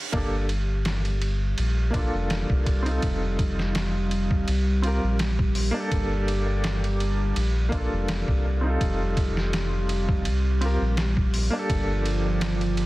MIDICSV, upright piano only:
0, 0, Header, 1, 2, 480
1, 0, Start_track
1, 0, Key_signature, -2, "minor"
1, 0, Tempo, 722892
1, 92, Time_signature, 4, 2, 24, 8
1, 8538, End_track
2, 0, Start_track
2, 0, Title_t, "Upright piano"
2, 0, Program_c, 0, 0
2, 81, Note_on_c, 0, 58, 85
2, 90, Note_on_c, 0, 62, 78
2, 101, Note_on_c, 0, 67, 77
2, 109, Note_on_c, 0, 69, 96
2, 273, Note_off_c, 0, 58, 0
2, 277, Note_off_c, 0, 62, 0
2, 283, Note_off_c, 0, 67, 0
2, 287, Note_off_c, 0, 69, 0
2, 1264, Note_on_c, 0, 58, 76
2, 1282, Note_on_c, 0, 62, 69
2, 1301, Note_on_c, 0, 65, 74
2, 1322, Note_on_c, 0, 69, 82
2, 1857, Note_off_c, 0, 58, 0
2, 1865, Note_off_c, 0, 62, 0
2, 1875, Note_off_c, 0, 65, 0
2, 1875, Note_on_c, 0, 60, 77
2, 1886, Note_off_c, 0, 69, 0
2, 1896, Note_on_c, 0, 63, 68
2, 1911, Note_on_c, 0, 65, 70
2, 1934, Note_on_c, 0, 69, 83
2, 2946, Note_off_c, 0, 60, 0
2, 2956, Note_off_c, 0, 63, 0
2, 2964, Note_off_c, 0, 65, 0
2, 2975, Note_off_c, 0, 69, 0
2, 3202, Note_on_c, 0, 60, 76
2, 3212, Note_on_c, 0, 65, 67
2, 3225, Note_on_c, 0, 67, 69
2, 3233, Note_on_c, 0, 70, 82
2, 3393, Note_off_c, 0, 60, 0
2, 3398, Note_off_c, 0, 65, 0
2, 3405, Note_off_c, 0, 67, 0
2, 3409, Note_off_c, 0, 70, 0
2, 3792, Note_on_c, 0, 58, 97
2, 3813, Note_on_c, 0, 62, 84
2, 3831, Note_on_c, 0, 67, 86
2, 3853, Note_on_c, 0, 69, 104
2, 4864, Note_off_c, 0, 58, 0
2, 4874, Note_off_c, 0, 62, 0
2, 4884, Note_off_c, 0, 67, 0
2, 4894, Note_off_c, 0, 69, 0
2, 5105, Note_on_c, 0, 58, 75
2, 5126, Note_on_c, 0, 62, 66
2, 5163, Note_on_c, 0, 69, 83
2, 5697, Note_off_c, 0, 58, 0
2, 5707, Note_off_c, 0, 62, 0
2, 5717, Note_on_c, 0, 60, 71
2, 5726, Note_off_c, 0, 69, 0
2, 5733, Note_on_c, 0, 63, 67
2, 5753, Note_on_c, 0, 65, 71
2, 5773, Note_on_c, 0, 69, 90
2, 6786, Note_off_c, 0, 60, 0
2, 6794, Note_off_c, 0, 63, 0
2, 6805, Note_off_c, 0, 65, 0
2, 6814, Note_off_c, 0, 69, 0
2, 7044, Note_on_c, 0, 60, 72
2, 7053, Note_on_c, 0, 65, 71
2, 7064, Note_on_c, 0, 67, 71
2, 7072, Note_on_c, 0, 70, 77
2, 7234, Note_off_c, 0, 60, 0
2, 7239, Note_off_c, 0, 65, 0
2, 7245, Note_off_c, 0, 67, 0
2, 7249, Note_off_c, 0, 70, 0
2, 7639, Note_on_c, 0, 58, 89
2, 7658, Note_on_c, 0, 62, 83
2, 7677, Note_on_c, 0, 67, 82
2, 7696, Note_on_c, 0, 69, 107
2, 8538, Note_off_c, 0, 58, 0
2, 8538, Note_off_c, 0, 62, 0
2, 8538, Note_off_c, 0, 67, 0
2, 8538, Note_off_c, 0, 69, 0
2, 8538, End_track
0, 0, End_of_file